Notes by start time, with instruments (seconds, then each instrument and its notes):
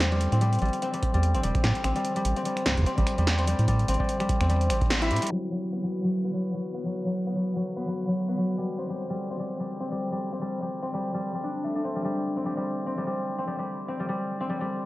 Already playing: analog synth bass E2, harp G3 A3 C4 D4 E4
0.01 snare, closed hi-hat
0.12 harp G3, closed hi-hat
0.21 closed hi-hat
0.32 analog synth bass A2, harp C4, closed hi-hat
0.41 harp G3, closed hi-hat
0.53 closed hi-hat
0.55 closed hi-hat
0.59 analog synth bass A1, harp G3, closed hi-hat
0.62 closed hi-hat
0.66 closed hi-hat
0.69 closed hi-hat
0.73 closed hi-hat
0.82 harp C4, closed hi-hat
0.94 harp G3, closed hi-hat
1.03 kick, closed hi-hat
1.14 analog synth bass E2, harp G3, closed hi-hat
1.23 closed hi-hat
1.34 analog synth bass A1, harp C4, closed hi-hat
1.43 analog synth bass E1, harp G3, closed hi-hat
1.55 finger snap, kick, closed hi-hat
1.64 analog synth bass A2, harp G3, snare, closed hi-hat
1.75 closed hi-hat
1.84 analog synth bass A1, harp C4, finger snap, closed hi-hat
1.96 harp G3, closed hi-hat
2.05 closed hi-hat
2.16 harp G3, closed hi-hat
2.25 analog synth bass A1, closed hi-hat
2.36 harp C4, closed hi-hat
2.45 harp G3, closed hi-hat
2.57 finger snap, closed hi-hat
2.66 harp G3, kick, snare, closed hi-hat
2.69 kick
2.72 kick
2.74 analog synth bass E2, kick, closed hi-hat
2.77 kick
2.80 kick
2.82 kick
2.84 harp C4, kick, closed hi-hat
2.98 analog synth bass A1, harp G3, kick, closed hi-hat
3.07 finger snap, closed hi-hat
3.18 analog synth bass E2, harp G3, closed hi-hat
3.27 snare, closed hi-hat
3.38 harp C4, closed hi-hat
3.47 harp G3, closed hi-hat
3.59 analog synth bass A2, closed hi-hat
3.68 harp G3, kick, closed hi-hat
3.79 closed hi-hat
3.88 analog synth bass A1, harp C4, closed hi-hat
3.94 closed hi-hat
4.00 harp G3, kick
4.09 closed hi-hat
4.20 harp G3, finger snap, closed hi-hat
4.29 kick, closed hi-hat
4.41 analog synth bass E2, harp C4, finger snap, closed hi-hat
4.50 harp G3, closed hi-hat
4.61 closed hi-hat
4.70 analog synth bass A1, harp C4, finger snap, closed hi-hat
4.81 kick, closed hi-hat
4.90 harp C4, snare, closed hi-hat
5.02 harp E4, closed hi-hat
5.11 analog synth bass A2, harp G4, closed hi-hat
5.16 closed hi-hat
5.22 harp G3, closed hi-hat
5.27 closed hi-hat
5.31 harp F#3
5.52 harp F#3
5.72 harp B3
5.83 harp F#3
6.04 harp F#3
6.24 harp B3
6.33 harp F#3
6.54 harp F#3
6.74 harp B3
6.85 harp F#3
7.06 harp F#3
7.26 harp B3
7.35 harp F#3
7.56 harp F#3
7.76 harp B3
7.88 harp F#3
8.08 harp F#3
8.28 harp B3
8.37 harp F#3
8.58 harp G3
8.78 harp C4
8.90 harp G3
9.10 harp G3
9.30 harp C4
9.39 harp G3
9.60 harp G3
9.80 harp C4
9.92 harp G3
10.12 harp G3
10.32 harp C4
10.41 harp G3
10.62 harp G3
10.82 harp C4
10.94 harp G3
11.14 harp G3
11.34 harp G3
11.43 harp D4
11.64 harp A3
11.75 harp D4
11.84 harp C4
11.96 harp G3
12.05 harp G3
12.36 harp C4
12.45 harp G3
12.57 harp G3
12.86 harp C4
12.98 harp G3
13.07 harp G3
13.38 harp C4
13.47 harp G3
13.59 harp G3
13.88 harp C4
14.00 harp G3
14.09 harp G3
14.41 harp C4
14.50 harp G3
14.61 harp G3